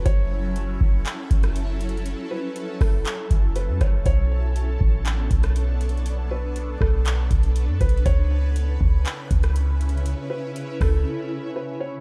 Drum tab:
HH |x-----------x-----------x-----x--x--x-----x-x-x-|x-----------x-----o-----x-----x-----x-----x-----|x-----------x-----------x-----x--x--x-----x-x-x-|x-----------x-----------x-----x--x--x-----x-x-x-|
CP |------------------------x-----------------------|------------------------x-----------------------|------------------------x-----------------------|------------------------x-----------------------|
SD |---------------------------------r--------------|------------------r-----------------------r-----|---------------------------------r--------------|------------------r-----------------------------|
BD |o-----------------o-----------o-----------------|------------------o-----------o-----------o-----|o-----------------o-----------o-----------------|------------------o-----------o-----------o-----|

HH |x-----------x-----------x-----x--x--x-----x-x-x-|x-----------x-----o-----------------------------|
CP |------------------------x-----------------------|------------------------------------------------|
SD |---------------------------------r--------------|------------------r-----------------------------|
BD |o-----------------o-----------o-----------------|------------------o-----------------------------|